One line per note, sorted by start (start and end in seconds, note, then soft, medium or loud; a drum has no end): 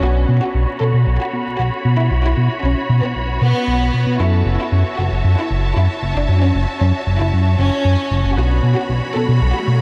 0.00 0.26 B1 loud
0.00 4.17 B3 medium
0.00 4.17 C#4 medium
0.00 4.17 D4 medium
0.00 8.33 F#4 medium
0.00 0.29 F#4 medium
0.00 4.17 F#4 medium
0.00 8.33 C#5 medium
0.00 4.16 B5 medium
0.28 0.40 B2 medium
0.41 0.68 F#4 medium
0.54 0.66 B1 loud
0.81 0.92 B2 loud
0.81 1.08 A4 medium
0.94 1.05 B2 medium
1.07 1.18 B1 loud
1.20 1.47 F#4 medium
1.33 1.56 B2 medium
1.59 1.71 B1 medium
1.59 1.86 F#4 medium
1.85 1.97 B2 loud
1.98 2.10 B2 medium
1.98 2.16 E4 medium
2.11 2.34 B1 loud
2.24 2.51 E4 medium
2.37 2.49 B2 medium
2.63 2.75 B1 loud
2.63 2.90 C#4 medium
2.89 3.01 B2 loud
3.02 3.14 B2 medium
3.02 3.29 B3 medium
3.15 3.39 B1 medium
3.41 3.53 B2 loud
3.41 4.09 B3 medium
3.67 3.91 B1 loud
3.94 4.05 B2 medium
4.07 4.18 B2 medium
4.20 4.43 F#2 loud
4.20 8.34 C#4 medium
4.20 4.47 E4 medium
4.20 8.34 E4 medium
4.20 8.34 F#4 medium
4.20 8.34 A4 medium
4.20 8.33 E5 medium
4.20 8.33 A5 medium
4.46 4.58 F#1 medium
4.59 4.86 E4 medium
4.72 4.84 F#2 loud
4.98 5.10 F#1 loud
4.98 5.25 F#4 medium
5.11 5.23 F#1 medium
5.24 5.36 F#2 loud
5.37 5.64 E4 medium
5.50 5.74 F#1 medium
5.76 5.88 F#2 medium
5.76 6.03 E4 medium
6.02 6.14 F#1 loud
6.16 6.27 F#1 medium
6.16 6.34 D4 medium
6.29 6.52 F#2 loud
6.41 6.69 C#4 medium
6.55 6.66 F#1 medium
6.81 6.92 F#2 loud
6.81 7.08 C#4 medium
7.07 7.18 F#1 loud
7.20 7.31 F#1 medium
7.20 7.47 E4 medium
7.33 7.56 F#2 medium
7.59 7.70 F#1 loud
7.59 8.27 C#4 medium
7.85 7.97 F#2 medium
8.11 8.23 F#1 loud
8.24 8.36 F#1 medium
8.37 8.60 B1 loud
8.37 9.81 B3 medium
8.37 9.81 C#4 medium
8.37 9.81 D4 medium
8.37 8.64 F#4 loud
8.37 9.81 F#4 medium
8.37 9.81 C#5 medium
8.37 9.81 B5 medium
8.37 riser medium
8.63 8.75 B2 medium
8.76 9.03 F#4 medium
8.89 9.01 B1 loud
9.15 9.27 B2 loud
9.15 9.42 A4 medium
9.28 9.40 B2 medium
9.41 9.53 B1 loud
9.54 9.81 F#4 medium
9.68 9.81 B2 medium